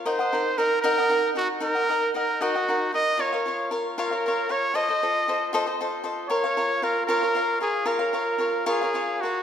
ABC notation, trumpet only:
X:1
M:6/8
L:1/8
Q:3/8=77
K:Bbm
V:1 name="Trumpet"
c2 B B2 G | B2 B G2 e | d2 z B2 d | e3 z3 |
d2 B B2 A | B3 A2 G |]